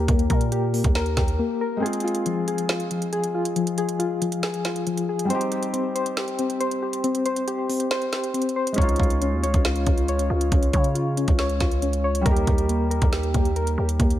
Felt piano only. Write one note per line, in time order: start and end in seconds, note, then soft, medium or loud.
1.77 5.23 G#3 medium
1.77 5.25 C4 medium
1.83 5.27 F4 medium
1.83 5.28 G#4 medium
5.25 8.71 G3 medium
5.25 8.73 C4 medium
5.31 8.75 D#4 medium
5.31 8.76 G4 medium
8.73 12.19 G#3 medium
8.73 12.21 C#4 medium
8.79 12.22 D#4 medium
8.79 12.24 F4 medium
12.21 14.19 G3 medium
12.21 14.19 A#3 medium
12.28 14.19 D#4 medium
12.28 14.19 G4 medium